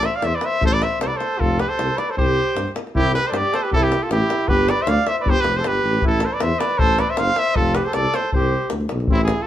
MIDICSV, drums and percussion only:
0, 0, Header, 1, 2, 480
1, 0, Start_track
1, 0, Key_signature, 0, "major"
1, 0, Tempo, 385852
1, 773, Time_signature, 2, 2, 24, 8
1, 11778, End_track
2, 0, Start_track
2, 0, Title_t, "Davul"
2, 36, Note_on_c, 9, 37, 69
2, 160, Note_off_c, 9, 37, 0
2, 178, Note_on_c, 9, 37, 25
2, 279, Note_off_c, 9, 37, 0
2, 279, Note_on_c, 9, 37, 78
2, 403, Note_off_c, 9, 37, 0
2, 513, Note_on_c, 9, 37, 72
2, 637, Note_off_c, 9, 37, 0
2, 661, Note_on_c, 9, 37, 28
2, 771, Note_on_c, 9, 43, 101
2, 786, Note_off_c, 9, 37, 0
2, 895, Note_off_c, 9, 43, 0
2, 1018, Note_on_c, 9, 37, 72
2, 1142, Note_off_c, 9, 37, 0
2, 1151, Note_on_c, 9, 37, 23
2, 1258, Note_off_c, 9, 37, 0
2, 1258, Note_on_c, 9, 37, 90
2, 1383, Note_off_c, 9, 37, 0
2, 1499, Note_on_c, 9, 37, 61
2, 1623, Note_off_c, 9, 37, 0
2, 1636, Note_on_c, 9, 37, 23
2, 1749, Note_on_c, 9, 43, 87
2, 1761, Note_off_c, 9, 37, 0
2, 1873, Note_off_c, 9, 43, 0
2, 1984, Note_on_c, 9, 37, 71
2, 2108, Note_off_c, 9, 37, 0
2, 2120, Note_on_c, 9, 37, 20
2, 2228, Note_off_c, 9, 37, 0
2, 2228, Note_on_c, 9, 37, 73
2, 2353, Note_off_c, 9, 37, 0
2, 2466, Note_on_c, 9, 37, 61
2, 2591, Note_off_c, 9, 37, 0
2, 2606, Note_on_c, 9, 37, 25
2, 2714, Note_on_c, 9, 43, 88
2, 2731, Note_off_c, 9, 37, 0
2, 2838, Note_off_c, 9, 43, 0
2, 2853, Note_on_c, 9, 37, 21
2, 2978, Note_off_c, 9, 37, 0
2, 3191, Note_on_c, 9, 37, 78
2, 3316, Note_off_c, 9, 37, 0
2, 3328, Note_on_c, 9, 37, 26
2, 3432, Note_off_c, 9, 37, 0
2, 3432, Note_on_c, 9, 37, 75
2, 3557, Note_off_c, 9, 37, 0
2, 3571, Note_on_c, 9, 37, 30
2, 3675, Note_on_c, 9, 43, 90
2, 3696, Note_off_c, 9, 37, 0
2, 3800, Note_off_c, 9, 43, 0
2, 3921, Note_on_c, 9, 37, 71
2, 4045, Note_off_c, 9, 37, 0
2, 4062, Note_on_c, 9, 37, 21
2, 4150, Note_off_c, 9, 37, 0
2, 4150, Note_on_c, 9, 37, 80
2, 4274, Note_off_c, 9, 37, 0
2, 4401, Note_on_c, 9, 37, 70
2, 4525, Note_off_c, 9, 37, 0
2, 4540, Note_on_c, 9, 37, 31
2, 4635, Note_on_c, 9, 43, 92
2, 4664, Note_off_c, 9, 37, 0
2, 4760, Note_off_c, 9, 43, 0
2, 4874, Note_on_c, 9, 37, 74
2, 4999, Note_off_c, 9, 37, 0
2, 5012, Note_on_c, 9, 37, 28
2, 5111, Note_off_c, 9, 37, 0
2, 5111, Note_on_c, 9, 37, 83
2, 5235, Note_off_c, 9, 37, 0
2, 5352, Note_on_c, 9, 37, 80
2, 5476, Note_off_c, 9, 37, 0
2, 5482, Note_on_c, 9, 37, 30
2, 5576, Note_on_c, 9, 43, 93
2, 5606, Note_off_c, 9, 37, 0
2, 5700, Note_off_c, 9, 43, 0
2, 5829, Note_on_c, 9, 37, 83
2, 5952, Note_off_c, 9, 37, 0
2, 5952, Note_on_c, 9, 37, 27
2, 6060, Note_off_c, 9, 37, 0
2, 6060, Note_on_c, 9, 37, 91
2, 6185, Note_off_c, 9, 37, 0
2, 6302, Note_on_c, 9, 37, 68
2, 6427, Note_off_c, 9, 37, 0
2, 6444, Note_on_c, 9, 37, 27
2, 6546, Note_on_c, 9, 43, 100
2, 6569, Note_off_c, 9, 37, 0
2, 6669, Note_on_c, 9, 37, 22
2, 6671, Note_off_c, 9, 43, 0
2, 6772, Note_off_c, 9, 37, 0
2, 6772, Note_on_c, 9, 37, 68
2, 6896, Note_off_c, 9, 37, 0
2, 6908, Note_on_c, 9, 37, 26
2, 7020, Note_off_c, 9, 37, 0
2, 7020, Note_on_c, 9, 37, 87
2, 7145, Note_off_c, 9, 37, 0
2, 7152, Note_on_c, 9, 37, 32
2, 7277, Note_off_c, 9, 37, 0
2, 7386, Note_on_c, 9, 37, 30
2, 7489, Note_on_c, 9, 43, 94
2, 7510, Note_off_c, 9, 37, 0
2, 7613, Note_off_c, 9, 43, 0
2, 7717, Note_on_c, 9, 37, 79
2, 7841, Note_off_c, 9, 37, 0
2, 7869, Note_on_c, 9, 37, 25
2, 7967, Note_off_c, 9, 37, 0
2, 7967, Note_on_c, 9, 37, 94
2, 8092, Note_off_c, 9, 37, 0
2, 8217, Note_on_c, 9, 37, 86
2, 8341, Note_off_c, 9, 37, 0
2, 8345, Note_on_c, 9, 37, 27
2, 8447, Note_on_c, 9, 43, 112
2, 8469, Note_off_c, 9, 37, 0
2, 8572, Note_off_c, 9, 43, 0
2, 8690, Note_on_c, 9, 37, 73
2, 8814, Note_off_c, 9, 37, 0
2, 8834, Note_on_c, 9, 37, 25
2, 8921, Note_off_c, 9, 37, 0
2, 8921, Note_on_c, 9, 37, 89
2, 9045, Note_off_c, 9, 37, 0
2, 9158, Note_on_c, 9, 37, 71
2, 9283, Note_off_c, 9, 37, 0
2, 9295, Note_on_c, 9, 37, 27
2, 9400, Note_on_c, 9, 43, 95
2, 9420, Note_off_c, 9, 37, 0
2, 9525, Note_off_c, 9, 43, 0
2, 9636, Note_on_c, 9, 37, 76
2, 9761, Note_off_c, 9, 37, 0
2, 9780, Note_on_c, 9, 37, 26
2, 9870, Note_off_c, 9, 37, 0
2, 9870, Note_on_c, 9, 37, 82
2, 9994, Note_off_c, 9, 37, 0
2, 10123, Note_on_c, 9, 37, 73
2, 10247, Note_off_c, 9, 37, 0
2, 10259, Note_on_c, 9, 37, 28
2, 10357, Note_on_c, 9, 43, 92
2, 10383, Note_off_c, 9, 37, 0
2, 10481, Note_off_c, 9, 43, 0
2, 10488, Note_on_c, 9, 37, 20
2, 10612, Note_off_c, 9, 37, 0
2, 10724, Note_on_c, 9, 37, 24
2, 10821, Note_off_c, 9, 37, 0
2, 10821, Note_on_c, 9, 37, 80
2, 10946, Note_off_c, 9, 37, 0
2, 10956, Note_on_c, 9, 37, 24
2, 11061, Note_off_c, 9, 37, 0
2, 11061, Note_on_c, 9, 37, 68
2, 11186, Note_off_c, 9, 37, 0
2, 11199, Note_on_c, 9, 37, 28
2, 11290, Note_on_c, 9, 43, 102
2, 11323, Note_off_c, 9, 37, 0
2, 11415, Note_off_c, 9, 43, 0
2, 11541, Note_on_c, 9, 37, 82
2, 11665, Note_off_c, 9, 37, 0
2, 11778, End_track
0, 0, End_of_file